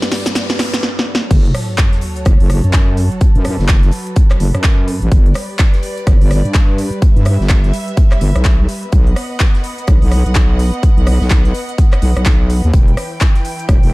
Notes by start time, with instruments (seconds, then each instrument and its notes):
Already playing: string section G2 G3 B4 D5, noise sweep, riser
0.02 snare, closed hi-hat, cabasa
0.11 snare, closed hi-hat, open hi-hat
0.26 snare, closed hi-hat, cabasa
0.35 snare, closed hi-hat, cabasa
0.49 snare, closed hi-hat, cabasa
0.59 snare, closed hi-hat, open hi-hat
0.73 snare, closed hi-hat, cabasa
0.83 snare
0.99 snare
1.15 snare
1.31 wobble bass F#1, string section F#3 F#4 A4 C#5, kick, closed hi-hat, crash, sub drop
1.45 closed hi-hat
1.54 cross-stick, closed hi-hat, open hi-hat
1.78 kick, snare, clap, closed hi-hat
1.92 snare, closed hi-hat
2.01 closed hi-hat, open hi-hat
2.16 closed hi-hat
2.25 wobble bass F#1, kick, cross-stick, closed hi-hat
2.40 wobble bass F#1, open hi-hat
2.50 cross-stick, closed hi-hat, open hi-hat
2.64 wobble bass F#2, closed hi-hat
2.72 kick, snare, clap, closed hi-hat
2.97 closed hi-hat, open hi-hat
3.12 closed hi-hat
3.21 string section B4, kick, closed hi-hat
3.35 wobble bass F#2, closed hi-hat
3.44 cross-stick, closed hi-hat, open hi-hat
3.59 wobble bass F#1, snare
3.68 kick, snare, clap, closed hi-hat
3.83 snare, closed hi-hat
3.91 closed hi-hat, open hi-hat
4.07 closed hi-hat
4.16 kick, closed hi-hat
4.31 cross-stick, clap, closed hi-hat
4.40 wobble bass F#1, closed hi-hat, open hi-hat
4.55 wobble bass F#2, cross-stick, closed hi-hat
4.63 kick, snare, clap, closed hi-hat
4.88 closed hi-hat, open hi-hat
5.02 wobble bass A1, closed hi-hat
5.11 wobble bass G1, string section G3 G4 D5, kick, closed hi-hat
5.26 closed hi-hat
5.34 cross-stick, closed hi-hat, open hi-hat
5.59 kick, snare, clap, closed hi-hat
5.73 snare, closed hi-hat
5.83 closed hi-hat, open hi-hat
5.97 closed hi-hat
6.07 wobble bass G1, kick, cross-stick, closed hi-hat
6.21 wobble bass G1, open hi-hat
6.31 cross-stick, closed hi-hat, open hi-hat
6.45 wobble bass G2, closed hi-hat
6.54 kick, snare, clap, closed hi-hat
6.78 closed hi-hat, open hi-hat
6.93 closed hi-hat
7.02 string section E5, kick, closed hi-hat
7.16 wobble bass G2, closed hi-hat
7.25 cross-stick, closed hi-hat, open hi-hat
7.40 wobble bass G1, snare
7.49 kick, snare, clap, closed hi-hat
7.64 snare, closed hi-hat
7.73 closed hi-hat, open hi-hat
7.88 closed hi-hat
7.97 kick, closed hi-hat
8.12 cross-stick, clap, closed hi-hat
8.21 wobble bass G1, closed hi-hat, open hi-hat
8.35 wobble bass B1, cross-stick, closed hi-hat
8.44 kick, snare, clap, closed hi-hat
8.69 closed hi-hat, open hi-hat
8.83 closed hi-hat
8.92 wobble bass B1, string section B3 D#5 F#5, kick, closed hi-hat
9.07 closed hi-hat
9.16 cross-stick, closed hi-hat, open hi-hat
9.40 kick, snare, clap, closed hi-hat
9.55 snare, closed hi-hat
9.64 closed hi-hat, open hi-hat
9.78 closed hi-hat
9.87 wobble bass B1, kick, cross-stick, closed hi-hat
10.02 wobble bass B1, open hi-hat
10.11 cross-stick, closed hi-hat, open hi-hat
10.26 wobble bass B1, closed hi-hat
10.35 kick, snare, clap, closed hi-hat
10.59 closed hi-hat, open hi-hat
10.74 closed hi-hat
10.83 kick, closed hi-hat
10.97 wobble bass B1, closed hi-hat
11.06 cross-stick, closed hi-hat, open hi-hat
11.21 wobble bass B1, snare
11.30 kick, snare, clap, closed hi-hat
11.45 snare, closed hi-hat
11.54 closed hi-hat, open hi-hat
11.69 closed hi-hat
11.78 kick, closed hi-hat
11.93 cross-stick, clap, closed hi-hat
12.02 wobble bass B1, closed hi-hat, open hi-hat
12.17 wobble bass B1, cross-stick, closed hi-hat
12.25 kick, snare, clap, closed hi-hat
12.50 closed hi-hat, open hi-hat
12.64 wobble bass D#2, closed hi-hat
12.73 wobble bass E1, string section E3 E4 G5, kick, closed hi-hat
12.88 closed hi-hat
12.97 cross-stick, closed hi-hat, open hi-hat
13.21 kick, snare, clap, closed hi-hat
13.35 snare, closed hi-hat
13.45 closed hi-hat, open hi-hat
13.59 closed hi-hat
13.69 wobble bass E1, kick, cross-stick, closed hi-hat
13.83 wobble bass E1, open hi-hat